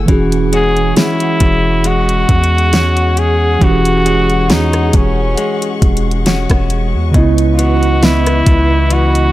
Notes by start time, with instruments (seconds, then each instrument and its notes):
Already playing: clean electric guitar A3 E4 G#4
0.06 808-style bass E1, tine electric piano E3 C#4, clean electric guitar E3, string section G#4 F#5 C#6, kick, closed hi-hat
0.10 tine electric piano F#4 G#4
0.32 closed hi-hat
0.53 clean electric guitar G#3 C#4 F#4, french horn G#4, closed hi-hat
0.77 closed hi-hat
0.96 clean electric guitar C#4, french horn E4, snare, closed hi-hat
1.20 closed hi-hat
1.40 808-style bass E1, kick, closed hi-hat
1.84 clean electric guitar G#3, french horn F#4, closed hi-hat
2.09 closed hi-hat
2.29 808-style bass E2, kick, closed hi-hat
2.44 closed hi-hat
2.58 closed hi-hat
2.73 clean electric guitar G#3 C#4 F#4, snare, closed hi-hat
2.97 closed hi-hat
3.17 french horn G#4, closed hi-hat
3.59 808-style bass E1, tine electric piano E3 C#4, clean electric guitar E3, kick, closed hi-hat
3.63 tine electric piano F#4 G4, french horn F#4
3.72 tine electric piano G#4
3.85 closed hi-hat
4.06 clean electric guitar G#3 C#4 F#4, closed hi-hat
4.30 closed hi-hat
4.50 808-style bass E2, clean electric guitar C#4, french horn D#4, snare, closed hi-hat
4.73 cross-stick, closed hi-hat
4.93 808-style bass E1, french horn C#4, kick, closed hi-hat
5.38 clean electric guitar G#3, closed hi-hat
5.62 closed hi-hat
5.82 808-style bass E1, kick, closed hi-hat
5.97 closed hi-hat
6.11 closed hi-hat
6.26 clean electric guitar G#3 C#4 F#4, snare, closed hi-hat
6.50 808-style bass E1, kick, cross-stick, closed hi-hat
6.70 closed hi-hat
6.94 808-style bass E2
7.12 808-style bass C#2, tine electric piano C#3 B3, clean electric guitar C#3, string section B4 D#5, kick, closed hi-hat
7.16 tine electric piano E4 D#5
7.38 closed hi-hat
7.53 french horn F4
7.58 clean electric guitar E3 B3, french horn F#4, closed hi-hat
7.83 closed hi-hat
8.03 clean electric guitar B3, french horn E4, snare, closed hi-hat
8.27 cross-stick, closed hi-hat
8.46 808-style bass C#2, kick, closed hi-hat
8.90 clean electric guitar E3, french horn F#4, closed hi-hat
9.15 closed hi-hat